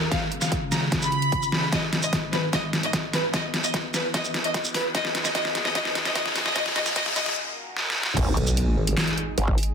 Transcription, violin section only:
0.11 F5
0.42 F5
0.72 A#5
1.02 B5
1.72 D#5
2.03 D#5
2.33 B4
2.53 D#5
2.83 D#5
3.13 B4
3.34 D#5
3.64 D#5
3.94 B4
4.14 D#5
4.44 D#5
4.75 B4
4.95 D#5
5.25 D#5
5.35 D#5
5.65 D#5
5.75 D#5
6.05 D#5
6.15 D#5
6.46 D#5
6.56 D#5
6.76 D#5
6.96 D#5
7.16 D#5

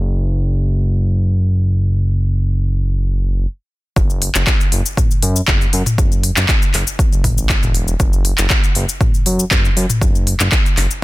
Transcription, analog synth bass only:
Already playing: F#1
3.96 F#1
4.35 F#1
4.72 F#1
5.23 F#2
5.48 F#1
5.73 F#2
5.98 F#1
6.37 F#1
6.74 F#1
7.12 F#1
7.37 A1
7.63 E1
8.00 F#1
8.38 F#1
8.76 F#1
9.26 F#2
9.51 F#1
9.76 F#2
10.02 F#1
10.40 F#1
10.77 F#1

